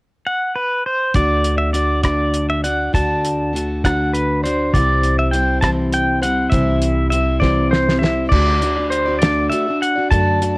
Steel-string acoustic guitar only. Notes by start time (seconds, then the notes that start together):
1.14 D3 A3 D4 F#4 D5
1.73 A3 D4 F#4 D5
2.03 D3 A3 D4 F#4 D5
2.64 D4 F#4 D5
2.93 D3 A3 D4 F#4 D5
3.53 A3 D4 F#4 D5
3.84 D3 A3 D4 F#4 D5
4.43 D4 F#4 D5
4.74 C3 E3 G3 C4 E4 C5
5.32 G3 C4 E4 C5
5.63 C3 E3 G3 C4 E4 C5
6.22 G3 C4 E4 C5
6.51 C3 E3 G3 C4 E4 C5
7.12 G3 C4 E4 C5
7.42 C3 E3 G3 C4 E4 C5
8.02 G3 C4 E4 C5
8.32 D3 A3 D4 F#4 D5
8.62 A3 D4 F#4 D5
8.76 D4 F#4 D5
9.05 D4 F#4 D5
9.21 D3 A3 D4 F#4 D5
9.51 A3 D4 F#4 D5
9.67 D4 F#4 D5
9.96 D4 F#4 D5
10.11 D3 A3 D4 F#4 D5
10.40 A3 D4 F#4 D5